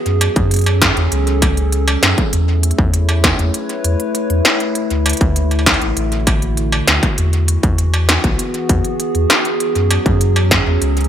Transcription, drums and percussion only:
0.06 closed hi-hat soft
0.21 closed hi-hat loud
0.21 struck metal medium
0.36 kick loud
0.36 closed hi-hat soft
0.51 closed hi-hat medium
0.54 closed hi-hat medium
0.56 closed hi-hat soft
0.59 closed hi-hat soft
0.61 closed hi-hat soft
0.64 closed hi-hat soft
0.66 closed hi-hat soft
0.66 struck metal medium
0.82 kick loud
0.82 snare loud
0.82 closed hi-hat loud
0.97 closed hi-hat soft
1.12 closed hi-hat medium
1.27 closed hi-hat soft
1.42 kick loud
1.42 closed hi-hat medium
1.42 struck metal medium
1.57 closed hi-hat soft
1.72 closed hi-hat medium
1.88 closed hi-hat soft
1.88 struck metal medium
2.03 snare loud
2.03 closed hi-hat medium
2.18 kick loud
2.18 closed hi-hat soft
2.33 closed hi-hat medium
2.63 closed hi-hat medium
2.71 closed hi-hat soft
2.79 kick loud
2.94 closed hi-hat medium
3.09 closed hi-hat soft
3.09 struck metal medium
3.24 kick loud
3.24 snare loud
3.24 closed hi-hat loud
3.39 closed hi-hat soft
3.54 closed hi-hat medium
3.69 closed hi-hat soft
3.84 closed hi-hat medium
4.00 closed hi-hat soft
4.15 closed hi-hat medium
4.30 closed hi-hat soft
4.45 snare loud
4.45 closed hi-hat medium
4.60 closed hi-hat soft
4.75 closed hi-hat medium
4.90 closed hi-hat soft
5.06 closed hi-hat medium
5.06 struck metal medium
5.09 closed hi-hat medium
5.13 closed hi-hat medium
5.17 closed hi-hat soft
5.21 kick loud
5.21 closed hi-hat soft
5.36 closed hi-hat medium
5.51 closed hi-hat soft
5.51 struck metal soft
5.59 struck metal soft
5.66 kick loud
5.66 snare loud
5.66 closed hi-hat medium
5.66 struck metal soft
5.74 struck metal soft
5.82 closed hi-hat soft
5.97 closed hi-hat medium
6.12 closed hi-hat soft
6.27 kick loud
6.27 closed hi-hat medium
6.27 struck metal medium
6.42 closed hi-hat soft
6.57 closed hi-hat medium
6.72 struck metal medium
6.88 snare loud
6.88 closed hi-hat medium
7.03 kick loud
7.03 closed hi-hat soft
7.03 struck metal soft
7.18 closed hi-hat medium
7.33 closed hi-hat soft
7.48 closed hi-hat medium
7.63 kick loud
7.63 closed hi-hat soft
7.78 closed hi-hat medium
7.94 closed hi-hat soft
7.94 struck metal medium
8.09 snare loud
8.09 closed hi-hat medium
8.24 kick loud
8.24 closed hi-hat soft
8.39 closed hi-hat medium
8.54 closed hi-hat soft
8.69 kick loud
8.69 closed hi-hat medium
8.85 closed hi-hat soft
9.00 closed hi-hat medium
9.15 closed hi-hat soft
9.30 snare loud
9.30 closed hi-hat medium
9.45 closed hi-hat soft
9.60 closed hi-hat medium
9.75 closed hi-hat soft
9.91 closed hi-hat medium
9.91 struck metal medium
10.06 kick loud
10.06 closed hi-hat soft
10.21 closed hi-hat medium
10.36 closed hi-hat soft
10.36 struck metal medium
10.51 kick loud
10.51 snare loud
10.51 closed hi-hat medium
10.82 closed hi-hat medium
10.97 closed hi-hat soft
11.01 closed hi-hat soft
11.04 closed hi-hat soft

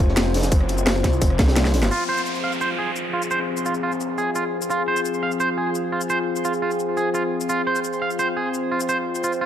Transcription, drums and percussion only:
0.09 snare soft
0.16 snare loud
0.16 closed hi-hat medium
0.16 closed hi-hat loud
0.16 shaker medium
0.34 snare medium
0.34 closed hi-hat medium
0.34 open hi-hat medium
0.39 snare medium
0.39 closed hi-hat medium
0.43 snare loud
0.43 closed hi-hat medium
0.43 shaker medium
0.51 kick loud
0.51 closed hi-hat medium
0.51 closed hi-hat loud
0.51 shaker medium
0.61 cross-stick soft
0.69 closed hi-hat medium
0.78 shaker medium
0.87 snare loud
0.87 closed hi-hat loud
0.87 closed hi-hat medium
0.87 shaker medium
0.95 shaker soft
1.04 kick medium
1.04 cross-stick soft
1.04 snare soft
1.04 closed hi-hat medium
1.13 shaker soft
1.22 kick loud
1.22 closed hi-hat loud
1.22 shaker medium
1.30 cross-stick soft
1.39 kick loud
1.39 snare medium
1.39 snare loud
1.39 closed hi-hat medium
1.39 shaker soft
1.48 snare loud
1.48 closed hi-hat medium
1.56 snare loud
1.56 snare medium
1.56 closed hi-hat loud
1.56 closed hi-hat medium
1.56 shaker medium
1.65 snare medium
1.65 snare loud
1.65 closed hi-hat medium
1.65 shaker soft
1.74 snare loud
1.74 closed hi-hat medium
1.74 open hi-hat medium
1.83 snare medium
1.83 shaker medium
1.91 shaker soft
2.17 shaker medium
2.26 shaker soft
2.35 shaker soft
2.52 shaker soft
2.61 shaker soft
2.96 shaker soft
3.22 shaker medium
3.31 shaker soft
3.57 shaker medium
3.66 shaker soft
3.74 shaker soft
3.92 shaker soft
4.01 shaker soft
4.18 shaker soft
4.36 shaker soft
4.62 shaker medium
4.70 shaker soft
4.97 shaker medium
5.05 shaker soft
5.14 shaker soft
5.31 shaker soft
5.40 shaker soft
5.75 shaker soft
6.01 shaker medium
6.10 shaker soft
6.36 shaker medium
6.45 shaker soft
6.54 shaker soft
6.71 shaker soft
6.80 shaker soft
6.97 shaker soft
7.15 shaker soft
7.41 shaker medium
7.49 shaker soft
7.76 shaker medium
7.84 shaker soft
7.93 shaker soft
8.10 shaker soft
8.19 shaker soft
8.54 shaker medium
8.80 shaker medium
8.89 shaker soft
9.15 shaker medium
9.24 shaker medium
9.33 shaker soft

